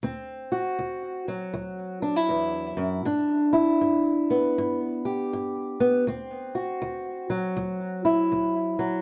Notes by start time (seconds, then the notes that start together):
0.03 D2 C4
0.52 F#4
0.79 D2
1.28 F#3
1.54 D2
2.02 D4
2.16 E4
2.29 E2
2.77 F#2
3.05 G2 D4
3.53 E4
3.81 G2
4.30 B3
4.58 G2
5.05 G4
5.33 G2
5.80 B3
6.07 D2 C4
6.55 F#4
6.82 D2
7.30 F#3
7.57 D2
8.05 E4
8.32 D2
8.79 F#3